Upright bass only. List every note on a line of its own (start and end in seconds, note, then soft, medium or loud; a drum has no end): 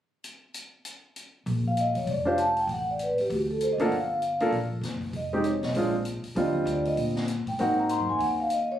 1.46 1.92 A#1 medium
1.95 2.06 F2 medium
2.07 2.65 F1 medium
2.67 3.14 A1 medium
3.18 muted upright bass stroke soft
3.30 3.76 D2 medium
3.78 3.88 D2 medium
3.89 4.48 G1 medium
4.51 4.80 A#1 medium
4.81 5.10 F#1 medium
5.13 5.59 F1 medium
5.62 5.73 B1 medium
5.74 6.20 A#1 medium
6.23 muted upright bass stroke soft
6.35 6.64 D#2 medium
6.65 6.94 D2 medium
6.97 7.43 A#2 medium
7.46 7.57 A2 medium
7.59 7.96 G#2 medium
7.98 8.08 F#2 medium
8.10 8.18 D#2 medium
8.19 8.77 D#2 medium